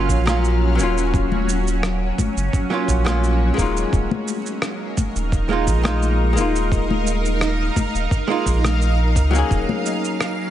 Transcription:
Already playing: sub bass F#1, hollow-body jazz guitar F#3 A#3 C#4 F4, ambient pad F#3 C#4 F5
0.09 sub bass A#1, kick, shaker
0.26 hollow-body jazz guitar F#3 A#3 C#4 F4, cross-stick, high conga, shaker
0.44 shaker
0.75 sub bass D#1, hollow-body jazz guitar F#3 A#3
0.79 hollow-body jazz guitar C#4 F4, shaker
0.98 shaker
1.14 kick, shaker
1.32 high conga
1.49 shaker
1.68 shaker
1.83 cross-stick, shaker
2.18 kick, high conga, shaker
2.37 sub bass F#1, shaker
2.53 kick, shaker
2.70 hollow-body jazz guitar F#3 A#3 C#4 F4
2.88 sub bass A#1, kick, shaker
3.05 hollow-body jazz guitar F#3 A#3 C#4 F4, cross-stick, high conga, shaker
3.24 shaker
3.54 hollow-body jazz guitar G#3 A#3
3.58 sub bass D#1, hollow-body jazz guitar D#4 F4, kick, shaker
3.77 shaker
3.93 sub bass D#1, ambient pad D#4 A#4 F5, kick, shaker
4.11 high conga
4.28 shaker
4.46 shaker
4.62 cross-stick, shaker
4.97 kick, high conga, shaker
5.16 sub bass D#1, shaker
5.32 kick, shaker
5.49 hollow-body jazz guitar G#3 A#3 D#4 F4
5.67 sub bass A#1, kick, shaker
5.83 hollow-body jazz guitar G#3 A#3 D#4 F4, cross-stick, high conga, shaker
6.02 shaker
6.33 sub bass D#1, hollow-body jazz guitar G#3 A#3
6.37 hollow-body jazz guitar D#4 F4, shaker
6.56 shaker
6.72 kick, shaker
6.90 high conga
7.07 shaker
7.25 shaker
7.41 cross-stick, shaker
7.76 kick, high conga, shaker
7.95 sub bass D#1, shaker
8.11 kick, shaker
8.28 hollow-body jazz guitar G#3 A#3 D#4 F4
8.46 sub bass A#1, kick, shaker
8.64 cross-stick, high conga, shaker
8.82 shaker
9.16 sub bass C#2, kick, shaker
9.31 hollow-body jazz guitar F#3 A#3
9.35 hollow-body jazz guitar C#4 G#4, shaker
9.51 sub bass D#1, ambient pad F#3 C#4, kick, shaker
9.69 high conga
9.86 shaker
10.05 shaker
10.21 cross-stick, shaker

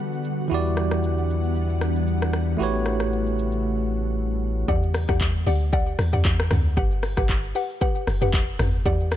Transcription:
Already playing: ambient pad D3 G3 B3 F#4 F#5, tine electric piano G3 D4 F#4 A4 B4
0.13 shaker
0.24 shaker
0.48 sub bass E2, tine electric piano E3 E4 F#4, ambient pad E3 B3 D4 F#5, shaker
0.53 tine electric piano G4 D5
0.65 shaker
0.77 cross-stick, shaker
0.91 cross-stick, shaker
1.04 shaker
1.18 shaker
1.30 shaker
1.43 shaker
1.55 shaker
1.70 shaker
1.81 cross-stick, shaker
1.96 shaker
2.07 shaker
2.22 cross-stick, shaker
2.33 cross-stick, shaker
2.57 sub bass A1, ambient pad C#3 A3, tine electric piano A3 E4 F#4 G4, shaker
2.62 tine electric piano B4 C#5
2.74 shaker
2.85 cross-stick, shaker
3.00 cross-stick, shaker
3.12 shaker
3.26 shaker
3.39 shaker
3.52 shaker
4.68 log drum bass E2, synth pluck G4 D5 F#5, kick, shaker
4.83 shaker
4.94 cross-stick, open hi-hat, shaker
5.09 log drum bass E2, synth pluck G4 D5 F#5, kick, cross-stick, shaker
5.21 kick, clap, shaker
5.35 shaker
5.47 log drum bass D2, synth pluck G4 D5 F#5, open hi-hat, shaker
5.61 shaker
5.73 synth pluck G4 D5 F#5, kick, shaker
5.87 shaker
5.99 log drum bass E2, cross-stick, open hi-hat, shaker
6.13 synth pluck G4 D5 F#5, mid tom, shaker
6.25 log drum bass E2, kick, clap, shaker
6.39 cross-stick, shaker
6.50 log drum bass D2, cross-stick, mid tom, open hi-hat, shaker
6.77 log drum bass G1, synth pluck G4 B4 F#5, kick, shaker
6.91 shaker
7.03 cross-stick, open hi-hat, shaker
7.17 log drum bass G1, synth pluck G4 B4 F#5, kick, cross-stick, shaker
7.29 kick, clap, shaker
7.44 shaker
7.55 synth pluck G4 B4 F#5, open hi-hat, shaker
7.69 shaker
7.81 synth pluck G4 B4 F#5, kick, shaker
7.96 shaker
8.07 log drum bass F#1, cross-stick, open hi-hat, shaker
8.22 synth pluck G4 B4 F#5, mid tom, shaker
8.33 kick, clap, shaker
8.48 shaker
8.59 log drum bass G1, cross-stick, mid tom, open hi-hat, shaker
8.86 log drum bass E2, synth pluck G4 D5 F#5, kick, shaker
9.00 shaker
9.11 cross-stick, open hi-hat, shaker

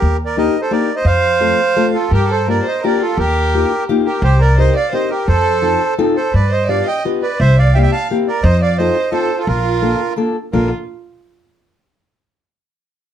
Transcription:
Already playing: accordion G4 A#4
0.02 upright bass D#2
0.25 accordion A#4 D5
0.37 steel-string acoustic guitar A#3 D4 D#4 G4, accordion A#4 D#5
0.61 accordion A4 C5
0.71 steel-string acoustic guitar A#3 D4 D#4 G4, accordion A#4 D5
0.95 accordion C5 D#5
1.05 upright bass F2, accordion C5 F5
1.40 steel-string acoustic guitar A3 C4 F4 A4
1.77 steel-string acoustic guitar A3 C4 F4 A4
1.94 violin F4, accordion F4 A4
2.11 upright bass G2, violin G4, accordion G4 A#4
2.29 violin A4, accordion A4 C5
2.47 steel-string acoustic guitar A#3 D4 F4 G4, violin A#4, accordion A#4 D5
2.64 violin C5, accordion C5 D#5
2.82 steel-string acoustic guitar A#3 D4 F4 G4, violin A#4, accordion A#4 D5
3.01 violin F4, accordion F4 A4
3.17 upright bass D#2, violin G4, accordion G4 A#4
3.54 steel-string acoustic guitar A#3 D#4 F4 G4
3.89 steel-string acoustic guitar A#3 D#4 F4 G4
4.06 accordion G4 A#4, violin G4
4.22 upright bass C2, violin G4, accordion G4 C5
4.41 violin A#4, accordion A#4 D5
4.58 steel-string acoustic guitar C4 D#4 G4 A#4, violin C5, accordion C5 D#5
4.76 violin D5, accordion D5 F5
4.92 steel-string acoustic guitar C4 D#4 G4 A#4, violin C5, accordion C5 D#5
5.10 accordion G4 A#4, violin G4
5.28 upright bass F2, violin A4, accordion A4 C5
5.62 steel-string acoustic guitar C4 D#4 F4 A4
5.98 steel-string acoustic guitar C4 D#4 F4 A4
6.16 violin A4, accordion A4 C5
6.33 upright bass G2, violin B4, accordion B4 D5
6.50 violin C5, accordion C5 D#5
6.67 steel-string acoustic guitar B3 D4 F4 G4, violin D5, accordion D5 F5
6.86 violin D#5, accordion D#5 G5
7.05 steel-string acoustic guitar B3 D4 F4 G4
7.21 violin B4, accordion B4 D5
7.40 upright bass C2, violin C5, accordion C5 E5
7.59 accordion D5 F5, violin D5
7.74 steel-string acoustic guitar A#3 C4 E4 G4, accordion E5 F5 G5, violin E5
7.79 violin D5, accordion G5
7.83 accordion E5, violin E5
7.92 accordion F5 A5, violin F5
8.11 steel-string acoustic guitar A#3 C4 E4 G4
8.28 accordion A#4 D5, violin A#4
8.43 upright bass F2, accordion C5 D#5, violin C5
8.62 accordion D5 F5, violin D5
8.78 steel-string acoustic guitar C4 D#4 F4 A4, accordion C5 D#5, violin C5
9.12 steel-string acoustic guitar C4 D#4 F4 A4, accordion A4 C5, violin A4
9.39 violin F4, accordion F4 A4
9.47 upright bass A#1, accordion F4 A#4, violin F4
9.82 steel-string acoustic guitar A#3 D4 F4 A4
10.16 steel-string acoustic guitar A#3 D4 F4 A4
10.53 upright bass A#1, steel-string acoustic guitar A#3 D4 F4 A4, violin F4, accordion A#4

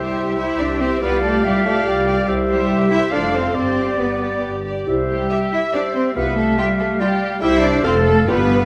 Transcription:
Already playing: double bass section C2, cello section G3, french horn section E4 G4, violin section G4 E5, viola section G4 C5, clarinet G4, flute C5, oboe E5
0.16 double bass section C2, flute E5
0.38 cello section E4, viola section G4 C5, violin section E5
0.59 double bass section C2, cello section D4, violin section D5
0.80 cello section C4, viola section G4 C5, violin section C5 E5
1.01 double bass section C2, cello section B3, french horn section F4, viola section G4 D5, violin section B4 F5, flute D5, oboe F5
1.22 cello section A3, viola section G4 D5, violin section A4 F5
1.43 double bass section C2, cello section G3, violin section G4, flute E5
1.65 cello section A3, viola section G4 D5, violin section A4 F5
1.86 double bass section C2, cello section G3, violin section G4, flute D5
2.08 viola section G4 D5, violin section F5
2.28 double bass section C2, french horn section E4 G4, clarinet G4, flute C5, oboe E5
2.48 cello section G3, violin section G4 E5, viola section G4 C5
2.70 double bass section C2, flute E5
2.91 cello section E4, viola section G4 C5, violin section E5
3.11 double bass section F1, cello section D4, french horn section F4 A4, viola section A4 C5, clarinet A4, violin section D5 F5, flute F5, oboe F5
3.33 cello section C4, viola section A4 C5, violin section C5 F5
3.54 double bass section G1, cello section C4, french horn section G4, clarinet G4, violin section C5, flute D5, oboe D5
3.76 viola section G4, violin section D5
3.99 double bass section G1, cello section B3, french horn section G4, violin section B4
4.21 viola section G4, violin section D5
4.43 double bass section G1
4.65 viola section G4, violin section D5
4.87 double bass section C2, french horn section E4 G4, flute C5, oboe E5
5.09 cello section G3, violin section G4
5.30 viola section G4, violin section E5, flute E5
5.52 cello section E4, violin section E5
5.74 cello section D4, viola section G4, flute C5, violin section D5 E5
5.94 cello section C4, violin section C5
6.15 double bass section C2, cello section B3, french horn section F4 G4, clarinet G4, violin section B4, flute E5, oboe F5
6.37 cello section A3, violin section A4
6.58 cello section G3, viola section F4 G4, violin section G4 G5
6.79 cello section A3, violin section A4
7.00 cello section G3, viola section F4 G4, violin section G4 G5, flute D5
7.41 double bass section C2, french horn section E4 G4, cello section E4, viola section E4 G4, clarinet G4, flute C5, violin section E5 G5, oboe E5
7.62 cello section D4, violin section D5
7.83 double bass section F1, cello section C4, french horn section F4 A4, viola section F4 A4, flute A4, clarinet A4, violin section C5 F5, oboe F5
8.06 cello section A3, violin section A4
8.27 double bass section G1, cello section B3, viola section F4 G4, french horn section F4 G4, clarinet G4, violin section B4 D5, flute B4, oboe F5

